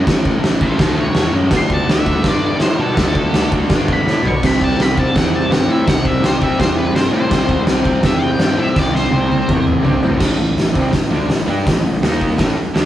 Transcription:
0.05 picked electric bass A1, distorted electric guitar A2 E3 A3, kick, snare, crash
0.25 kick
0.41 picked electric bass A1, distorted electric guitar A2 E3, snare, crash
0.46 distorted electric guitar A3
0.59 distorted electric guitar A3, lead electric guitar G4 E5, kick
0.65 distorted electric guitar E3
0.78 picked electric bass D2, distorted electric guitar A2 E3, lead electric guitar E4 C5, kick, snare, crash
0.83 distorted electric guitar A3
1.00 lead electric guitar C#5
1.15 picked electric bass E2, distorted electric guitar A2 E3, snare, crash
1.20 distorted electric guitar A3
1.33 picked electric bass F#2, distorted electric guitar A3
1.38 distorted electric guitar E3
1.50 picked electric bass D2, distorted electric guitar D3 A3, kick, snare, crash
1.55 distorted electric guitar D4, lead electric guitar C6
1.70 lead electric guitar A5, kick
1.85 picked electric bass D2, distorted electric guitar D3 A3
1.89 distorted electric guitar D4, lead electric guitar E5, snare, crash
2.02 distorted electric guitar D4
2.06 distorted electric guitar A3, kick
2.22 picked electric bass G2, distorted electric guitar D3 A3, kick, snare, crash
2.27 distorted electric guitar D4, lead electric guitar D5
2.46 lead electric guitar D5
2.56 picked electric bass A2, distorted electric guitar D3 A3, snare, crash
2.61 distorted electric guitar D4, lead electric guitar C5
2.75 picked electric bass B2, distorted electric guitar D4
2.80 distorted electric guitar A3, lead electric guitar A4
2.93 distorted electric guitar D3 A3, crash
2.97 picked electric bass D2, distorted electric guitar D4, kick, snare
3.15 kick
3.30 picked electric bass D2, distorted electric guitar D3 A3, snare, crash
3.35 distorted electric guitar D4
3.49 distorted electric guitar D4, kick
3.54 distorted electric guitar A3
3.69 picked electric bass G2, distorted electric guitar D3 A3, kick, snare, crash
3.73 distorted electric guitar D4
3.88 kick
3.93 lead electric guitar B5
4.06 picked electric bass A2, distorted electric guitar D3 A3, snare
4.11 distorted electric guitar D4
4.23 picked electric bass B2, distorted electric guitar D4, floor tom
4.27 distorted electric guitar A3, lead electric guitar C#6
4.42 picked electric bass C2, distorted electric guitar C3 G3 C4, kick, snare, crash
4.46 lead electric guitar B5
4.61 lead electric guitar A5, kick
4.77 picked electric bass C2, distorted electric guitar C3 G3, snare, crash
4.82 distorted electric guitar C4, lead electric guitar B5
4.97 distorted electric guitar G3 C4, lead electric guitar A5, kick
5.15 picked electric bass E2, distorted electric guitar C3 G3, lead electric guitar F#5, kick, snare, crash
5.21 distorted electric guitar C4
5.36 lead electric guitar A5
5.49 picked electric bass G2, distorted electric guitar C3, lead electric guitar F#5, snare, crash
5.54 distorted electric guitar G3 C4
5.68 picked electric bass A2, distorted electric guitar C4, lead electric guitar E5
5.73 distorted electric guitar G3
5.85 picked electric bass C2, distorted electric guitar C3 G3, lead electric guitar F#5, kick, snare, crash
5.90 distorted electric guitar C4
6.05 lead electric guitar E5, kick
6.21 picked electric bass C2, distorted electric guitar C3 G3, snare, crash
6.26 distorted electric guitar C4, lead electric guitar C5
6.41 distorted electric guitar C4, lead electric guitar E5, kick
6.45 distorted electric guitar G3
6.58 picked electric bass E2, distorted electric guitar C3 G3, lead electric guitar C5, kick, snare, crash
6.64 distorted electric guitar C4
6.78 lead electric guitar B4
6.94 picked electric bass G2, distorted electric guitar C3 G3, lead electric guitar C5, snare, crash
7.00 distorted electric guitar C4
7.12 picked electric bass A2, distorted electric guitar C4, lead electric guitar C5
7.17 distorted electric guitar G3
7.30 picked electric bass C2, distorted electric guitar C3 G3, kick, snare, crash
7.34 distorted electric guitar C4
7.49 kick
7.67 picked electric bass C2, distorted electric guitar C3 G3, snare, crash
7.72 distorted electric guitar C4
7.84 distorted electric guitar C4, kick
7.89 distorted electric guitar G3
8.02 picked electric bass E2, distorted electric guitar C3 G3 C4, lead electric guitar E5, kick, snare, crash
8.23 lead electric guitar G5
8.38 picked electric bass G2, distorted electric guitar C3 G3, snare, crash
8.42 distorted electric guitar C4
8.56 picked electric bass A2, distorted electric guitar C4, lead electric guitar E5
8.61 distorted electric guitar G3
8.74 picked electric bass C2, distorted electric guitar C3 G3, kick, snare
8.79 distorted electric guitar C4, lead electric guitar D5
8.95 lead electric guitar C5, snare
9.10 picked electric bass C2, distorted electric guitar C3 G3, high tom
9.15 distorted electric guitar C4
9.28 distorted electric guitar C4
9.32 distorted electric guitar G3, high tom
9.47 picked electric bass E2, distorted electric guitar C3 G3, kick, mid tom
9.51 distorted electric guitar C4
9.67 mid tom
9.82 picked electric bass G2, distorted electric guitar C3 G3 C4, floor tom
10.01 picked electric bass A2, distorted electric guitar C4, floor tom
10.05 distorted electric guitar G3
10.18 picked electric bass A1, distorted electric guitar A2 E3 A3, kick, snare, crash
10.37 picked electric bass A1, distorted electric guitar A2 E3
10.56 picked electric bass A1, distorted electric guitar A2 E3, snare, open hi-hat
10.73 picked electric bass C2, distorted electric guitar C3 G3 C4, kick
10.91 picked electric bass A1, distorted electric guitar A2 E3, kick, snare, open hi-hat
11.09 picked electric bass D2, distorted electric guitar D3 A3 D4
11.27 picked electric bass A1, distorted electric guitar A2 E3, snare, open hi-hat
11.46 picked electric bass G2, distorted electric guitar G3 D4 G4
11.64 picked electric bass A1, distorted electric guitar A2 E3, kick, snare, open hi-hat
11.84 picked electric bass A1, distorted electric guitar A2 E3
12.02 picked electric bass D#2, distorted electric guitar D#3 A#3 D#4, snare, open hi-hat
12.21 kick
12.37 picked electric bass A1, distorted electric guitar A2 E3 A3, kick, snare, open hi-hat
12.57 muted distorted electric guitar stroke, muted picked electric bass stroke
12.74 picked electric bass D2, distorted electric guitar D3 A3 D4, snare, open hi-hat

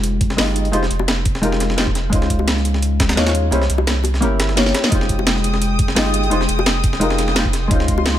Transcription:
Already playing: sub bass F1, hollow-body jazz guitar G#3 D#4 F4 G4 C5
0.03 closed hi-hat
0.21 kick, closed hi-hat
0.30 snare
0.37 sub bass G1, hollow-body jazz guitar G#3 D#4 F4 G4 D#5, snare, closed hi-hat, open hi-hat
0.56 closed hi-hat
0.65 closed hi-hat
0.72 sub bass F1, hollow-body jazz guitar G#3 D#4 F4 G4 C5, closed hi-hat
0.83 snare
0.91 sub bass F1, closed hi-hat
0.99 high bongo
1.08 snare, closed hi-hat
1.25 kick, closed hi-hat
1.35 snare
1.42 hollow-body jazz guitar G#3 D#4 F4 G4 A#4, closed hi-hat
1.52 snare
1.60 snare, closed hi-hat
1.70 snare
1.76 hollow-body jazz guitar G#3 D#4 F4 G4 C5, snare, closed hi-hat
1.87 kick
1.95 snare, closed hi-hat
2.10 sub bass C#2, hollow-body jazz guitar G#3 C#4 D#4, kick, closed hi-hat
2.14 hollow-body jazz guitar F4 C5
2.22 snare
2.30 kick, closed hi-hat
2.39 high bongo
2.48 snare, closed hi-hat
2.57 snare
2.65 closed hi-hat
2.74 snare
2.83 closed hi-hat
3.00 kick, snare, closed hi-hat
3.09 snare, closed hi-hat
3.16 sub bass D#2, hollow-body jazz guitar G#3 C#4 D#4 F4 C#5, snare, closed hi-hat
3.27 snare, closed hi-hat
3.35 closed hi-hat
3.51 sub bass C2, hollow-body jazz guitar A#3 C#4 E4 G4 C5, closed hi-hat
3.62 snare
3.70 sub bass C2, closed hi-hat
3.78 high bongo
3.87 snare, closed hi-hat
4.04 closed hi-hat, high bongo
4.14 snare
4.21 sub bass G1, hollow-body jazz guitar A#3 C#4 E4 G4 A#4, closed hi-hat
4.40 snare, closed hi-hat
4.49 snare
4.55 hollow-body jazz guitar A#3 C#4 E4 G4 C#5, snare, closed hi-hat
4.66 snare
4.75 snare, closed hi-hat
4.84 snare
4.89 sub bass F1, hollow-body jazz guitar G#3 D#4 F4, string section G#3 G5 D#6, kick, closed hi-hat
4.93 hollow-body jazz guitar G4 C5
5.01 snare
5.09 kick, closed hi-hat
5.19 high bongo
5.27 snare, closed hi-hat
5.36 snare
5.44 closed hi-hat
5.54 snare
5.62 closed hi-hat
5.79 kick, closed hi-hat
5.88 snare
5.95 sub bass G1, hollow-body jazz guitar G#3 D#4 F4 G4 D#5, snare, closed hi-hat, open hi-hat
6.14 closed hi-hat
6.23 closed hi-hat
6.30 sub bass F1, hollow-body jazz guitar G#3 D#4 F4 G4 C5, closed hi-hat
6.41 snare
6.49 sub bass F1, closed hi-hat
6.59 high bongo
6.66 snare, closed hi-hat
6.84 kick, closed hi-hat
6.93 snare
7.00 hollow-body jazz guitar G#3 D#4 F4 G4 A#4, closed hi-hat
7.10 snare
7.18 snare, closed hi-hat
7.28 snare
7.35 hollow-body jazz guitar G#3 D#4 F4 G4 C5, snare, closed hi-hat
7.45 kick
7.53 snare, closed hi-hat
7.68 sub bass C#2, hollow-body jazz guitar G#3 C#4 D#4, string section F4 D#5 C6, kick, closed hi-hat
7.72 hollow-body jazz guitar F4 C5
7.80 snare
7.88 kick, closed hi-hat
7.98 high bongo
8.06 snare, closed hi-hat
8.15 snare

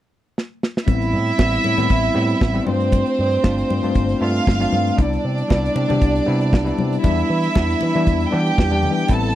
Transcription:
0.38 snare
0.63 snare
0.77 snare
0.86 picked electric bass A1, tine electric piano G3 B3 C4 E4, violin section E4 E5, kick, closed hi-hat, muted conga
1.02 closed hi-hat
1.13 picked electric bass A2
1.26 closed hi-hat
1.38 picked electric bass A1, tine electric piano G3 B3 C4 E4, kick, snare, high conga
1.53 closed hi-hat
1.64 picked electric bass A2, muted conga
1.77 picked electric bass A2, tine electric piano G3 B3 C4 E4, closed hi-hat, low conga
1.90 picked electric bass A1, kick, closed hi-hat, muted conga
2.04 closed hi-hat
2.14 picked electric bass A2, tine electric piano G3 B3 C4 E4
2.30 closed hi-hat
2.41 picked electric bass A1, kick, snare, high conga
2.54 tine electric piano G3 B3 C4 E4, closed hi-hat, high conga
2.66 picked electric bass G2, tine electric piano A3 C4 D4 F4, violin section C4 C5, high conga
2.80 closed hi-hat
2.92 kick, closed hi-hat, muted conga
3.06 closed hi-hat
3.19 picked electric bass G2
3.31 closed hi-hat
3.44 picked electric bass G1, tine electric piano A3 C4 D4 F4, kick, snare, high conga
3.58 closed hi-hat
3.70 picked electric bass G2, muted conga
3.82 picked electric bass G2, tine electric piano A3 C4 D4 F4, closed hi-hat
3.95 picked electric bass G1, kick, closed hi-hat
4.09 closed hi-hat
4.21 picked electric bass G2, tine electric piano A3 C4 D4 F4, violin section F4 F5
4.36 closed hi-hat
4.47 picked electric bass G1, kick, snare, high conga
4.60 tine electric piano A3 C4 D4 F4, closed hi-hat, high conga
4.73 picked electric bass G2, high conga
4.87 closed hi-hat
4.97 picked electric bass C2, tine electric piano G3 B3 D4 E4, violin section D4 D5, kick, closed hi-hat, muted conga
5.13 closed hi-hat
5.24 picked electric bass C3
5.38 closed hi-hat
5.48 picked electric bass C2, tine electric piano G3 B3 D4 E4, kick, snare, high conga
5.66 closed hi-hat
5.76 picked electric bass C3, muted conga
5.89 picked electric bass C3, tine electric piano G3 B3 D4 G4, closed hi-hat, low conga
6.01 picked electric bass C2, kick, closed hi-hat
6.16 closed hi-hat
6.26 picked electric bass C3, tine electric piano G3 B3 D4 E4
6.41 closed hi-hat
6.53 picked electric bass C2, kick, snare, high conga
6.64 tine electric piano G3 B3 D4 E4, closed hi-hat, high conga
6.78 picked electric bass C3, high conga
6.93 closed hi-hat
7.03 picked electric bass E2, tine electric piano G3 B3 D4 E4, violin section E4 E5, kick, closed hi-hat, muted conga
7.18 closed hi-hat
7.30 picked electric bass E3
7.43 closed hi-hat
7.55 picked electric bass E2, tine electric piano G3 B3 D4 E4, kick, snare, high conga
7.70 closed hi-hat
7.81 picked electric bass E3, muted conga
7.94 picked electric bass E3, tine electric piano G3 B3 D4 E4, closed hi-hat
8.07 picked electric bass E2, kick, closed hi-hat
8.21 closed hi-hat
8.31 picked electric bass E3, tine electric piano G3 B3 D4 G4, violin section G4 G5
8.46 closed hi-hat
8.58 picked electric bass E2, kick, snare, high conga
8.71 tine electric piano G3 B3 D4 G4, closed hi-hat, high conga
8.83 picked electric bass E3, high conga
8.98 closed hi-hat
9.08 picked electric bass A1, tine electric piano G3 B3 C4 E4, violin section A4 A5, kick, closed hi-hat, muted conga
9.23 closed hi-hat

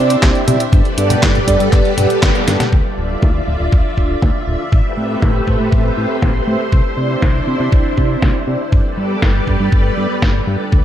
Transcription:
Already playing: analog synth bass C3, analog polysynth C4 E4 G4 D5, string machine D4 C5 E5
0.10 closed hi-hat
0.23 analog synth bass C2, kick, snare, clap, closed hi-hat
0.35 closed hi-hat
0.48 analog synth bass C3, analog polysynth C4 E4 G4 D5, closed hi-hat, high tom
0.60 closed hi-hat
0.73 analog synth bass G1, string machine G3 G4 A4 B4 D5, kick, closed hi-hat
0.85 closed hi-hat
0.98 analog synth bass G2, analog polysynth B3 G4 A4 D5, closed hi-hat
1.10 closed hi-hat, high tom
1.23 analog synth bass G1, kick, snare, clap, closed hi-hat
1.35 closed hi-hat, high tom
1.47 analog synth bass G2, analog polysynth B3 G4 A4 D5, kick, closed hi-hat
1.60 analog synth bass G2, closed hi-hat
1.73 analog synth bass G1, kick, clap, closed hi-hat
1.85 closed hi-hat
1.97 analog synth bass G2, analog polysynth B3 G4 A4 D5, closed hi-hat, high tom
2.10 closed hi-hat
2.23 analog synth bass G1, kick, snare, clap, closed hi-hat
2.35 closed hi-hat
2.47 analog synth bass G2, analog polysynth B3 G4 A4 D5, snare, closed hi-hat
2.60 snare, closed hi-hat, high tom
2.72 analog synth bass D2, string machine F4 D5 E5, kick
2.98 analog synth bass D1, analog polysynth D4 F4 A4 E5
3.22 analog synth bass D2, kick, snare
3.47 analog synth bass D1, analog polysynth D4 F4 A4 E5
3.60 analog synth bass D1
3.72 analog synth bass D2, kick
3.97 analog synth bass D1, analog polysynth D4 F4 A4 E5, kick
4.22 analog synth bass D2, kick, snare
4.47 analog synth bass D1, analog polysynth D4 F4 A4 E5
4.72 analog synth bass A1, string machine A3 G4 B4 C5, kick
4.97 analog synth bass A2, analog polysynth C4 G4 A4 E5
5.22 analog synth bass A1, kick, snare
5.47 analog synth bass A2, analog polysynth C4 G4 A4 E5, kick
5.60 analog synth bass A2
5.72 analog synth bass A1, kick
5.97 analog synth bass A2, analog polysynth C4 G4 A4
6.22 analog synth bass A1, kick, snare
6.47 analog synth bass A2, analog polysynth C4 G4 A4 E5
6.72 analog synth bass C2, string machine D4 E4, kick
6.97 analog synth bass C3, analog polysynth C4 E4 G4 D5
7.22 analog synth bass C2, kick, snare
7.47 analog synth bass C3, analog polysynth C4 E4 G4 D5
7.60 analog synth bass C3
7.72 analog synth bass C2, kick
7.97 analog synth bass C3, analog polysynth C4 E4 G4 D5, kick
8.22 analog synth bass C2, kick, snare
8.47 analog synth bass C3, analog polysynth C4 E4 G4 D5
8.72 analog synth bass G1, string machine G3 G4 A4 B4 D5, kick
8.97 analog synth bass G2, analog polysynth B3 G4 A4 D5
9.22 analog synth bass G1, kick, snare
9.47 analog synth bass G2, analog polysynth B3 G4 A4 D5, kick
9.60 analog synth bass G2
9.72 analog synth bass G1, kick
9.97 analog synth bass G2, analog polysynth B3 G4 A4 E5
10.22 analog synth bass G1, kick, snare
10.47 analog synth bass G2, analog polysynth F4 A4
10.72 analog synth bass D2, string machine F4 D5 E5, kick

